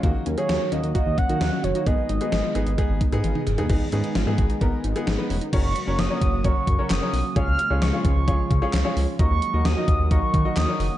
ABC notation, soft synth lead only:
X:1
M:4/4
L:1/16
Q:1/4=131
K:Abdor
V:1 name="Soft synth lead"
z2 B d3 e2 e2 g4 d2 | e12 z4 | z16 | d'4 e'4 d'4 e'4 |
f'4 d'2 d'8 z2 | d'4 e'4 d'4 e'4 |]